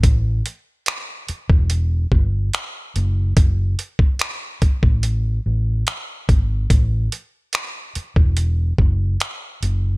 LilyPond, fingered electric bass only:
\new Staff \with { instrumentName = "Fingered electric bass" } { \clef bass \time 4/4 \key a \dorian \tempo 4 = 72 a,,8 r4 r16 e,,8. g,,8 r8 fis,,8 | fis,,8 r4 r16 a,,8. a,,8 r8 gis,,8 | a,,8 r4 r16 e,,8. fis,,8 r8 fis,,8 | }